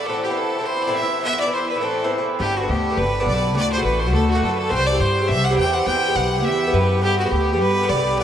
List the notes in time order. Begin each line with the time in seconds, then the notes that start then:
0.07 A2 E3 C4 E4 A4
0.23 G4
0.29 E3 C4 E4
0.36 A4
0.59 E3 C4 E4
0.65 C5
0.82 D5
0.87 A2 E3 C4 E4
0.95 E5
1.01 E3 C4 E4
1.23 G2 E3 B3 E4 E5
1.37 D5 E5
1.46 E3 B3 E4
1.54 C5
1.69 B4
1.75 E3 B3 E4
1.81 A2 E3 C4 E4 A4
2.04 A2 E3 C4 E4
2.18 E3 C4 E4
2.39 G1 G2 D3 B3 D4 G4
2.57 F#4
2.62 D3 B3 D4
2.69 D2 G4
2.90 D3 B3 D4
2.97 G1 B4
3.20 G2 D3 B3 D4
3.26 B1 D5
3.34 D3 B3 D4
3.55 D2 A2 D3 A3 F#4 D5
3.72 C5
3.77 D3 A3 F#4
3.84 A1 B4
4.00 C5
4.06 D3 A3 F#4
4.13 D2 A4
4.29 F#4
4.35 A2 D3 A3 F#4
4.42 F#2 A4
4.48 D3 A3 F#4
4.55 A4 B4
4.70 C2 G2 E3 C4 G4 C5
4.86 D5
4.92 E3 C4 G4
4.99 G2 C5
5.21 E3 C4 G4
5.28 C2 E5
5.44 F#5
5.51 G2 E3 C4 G4
5.57 E2 G5
5.65 E3 C4 G4
5.73 F#5
5.86 E2 G2 E3 B3 G4 G5
6.08 E3 B3 G4
6.15 B1 F#5
6.37 E3 B3 G4
6.44 E2 E5
6.67 G2 E3 B3 G4
6.73 F#2 B4
6.80 E3 B3 G4
7.01 G2 D3 B3 G4
7.18 F#4
7.24 D3 B3 G4
7.31 D2 G4
7.53 D3 B3 G4
7.59 G2 B4
7.83 G2 D3 B3 G4
7.89 C2 D5
7.97 D3 B3 G4
8.18 B1 B2 D3 B3 F#4 D5